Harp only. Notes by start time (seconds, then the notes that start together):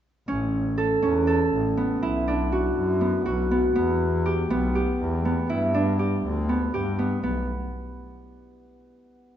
0.28 C#4
0.78 A4
1.02 C#4
1.27 A4
1.77 B3
2.02 E4
2.28 D4
2.52 F#4
3.01 B3
3.26 F#4
3.51 B3
3.75 B3
4.26 G4
4.50 B3
4.75 G4
5.25 B3
5.50 E4
5.74 D4
5.99 G4
6.49 B3
6.74 G4
6.99 B3
7.23 B3